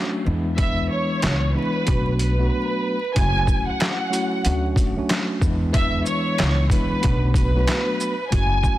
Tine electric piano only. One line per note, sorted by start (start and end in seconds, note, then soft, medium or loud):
0.00 0.22 F#3 medium
0.00 0.23 A3 medium
0.00 0.23 C#4 medium
0.00 0.23 D4 medium
0.00 0.24 F#4 loud
0.25 0.55 E3 medium
0.25 0.56 G#3 medium
0.25 0.56 B3 medium
0.25 0.57 D4 medium
0.25 0.57 E4 loud
0.57 1.48 E3 medium
0.57 1.48 G#3 medium
0.57 1.49 B3 medium
0.57 1.49 D4 medium
0.57 1.49 E4 loud
1.54 1.86 E3 medium
1.54 1.87 G#3 medium
1.54 1.84 B3 medium
1.54 1.85 D4 medium
1.54 1.88 E4 medium
1.84 2.33 F#3 medium
1.84 2.33 A3 medium
1.84 2.34 B3 medium
1.84 2.34 D4 medium
1.84 2.34 F#4 loud
2.38 2.97 F#3 medium
2.38 2.97 A3 medium
2.38 2.97 B3 medium
2.38 2.98 D4 medium
2.38 2.98 F#4 medium
3.14 4.06 F#3 medium
3.14 4.06 A3 medium
3.14 4.07 C#4 medium
3.14 4.07 E4 medium
3.14 4.07 F#4 loud
4.09 4.43 F#3 medium
4.09 4.44 A3 medium
4.09 4.44 C#4 medium
4.09 4.44 E4 medium
4.09 4.45 F#4 loud
4.45 4.93 F#3 loud
4.45 4.93 A3 medium
4.45 4.93 C#4 medium
4.45 4.93 D4 medium
4.45 4.94 F#4 loud
4.96 5.38 F#3 medium
4.96 5.39 A3 loud
4.96 5.39 C#4 medium
4.96 5.39 D4 medium
4.96 5.40 F#4 loud
5.41 5.71 E3 loud
5.41 5.72 G#3 loud
5.41 5.72 B3 medium
5.41 5.73 D4 medium
5.41 5.73 E4 loud
5.72 6.64 E3 loud
5.72 6.64 G#3 medium
5.72 6.65 B3 medium
5.72 6.65 D4 medium
5.72 6.65 E4 loud
6.70 7.02 E3 medium
6.70 7.03 G#3 medium
6.70 7.00 B3 medium
6.70 7.01 D4 medium
6.70 7.04 E4 medium
7.00 7.49 F#3 loud
7.00 7.49 A3 medium
7.00 7.50 B3 medium
7.00 7.50 D4 medium
7.00 7.50 F#4 loud
7.54 8.13 F#3 medium
7.54 8.13 A3 medium
7.54 8.13 B3 medium
7.54 8.14 D4 medium
7.54 8.14 F#4 loud
8.30 8.78 F#3 medium
8.30 8.78 A3 medium
8.30 8.78 C#4 medium
8.30 8.78 E4 medium
8.30 8.78 F#4 loud